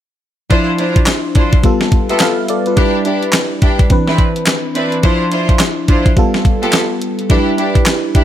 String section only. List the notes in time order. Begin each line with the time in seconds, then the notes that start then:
0.50 D4 E4 F4 C5
0.78 D4 E4 F4 C5
1.35 D4 E4 F4 C5
2.09 B3 F4 G4 A4
2.77 D4 E4 G4
3.05 D4 E4 G4
3.61 D4 E4 G4
4.07 C4 D4 E4 B4
4.75 C4 D4 E4 B4
5.03 D4 E4 F4 C5
5.31 D4 E4 F4 C5
5.88 D4 E4 F4 C5
6.62 B3 F4 G4 A4
7.29 D4 E4 G4
7.58 D4 E4 G4
8.14 D4 E4 G4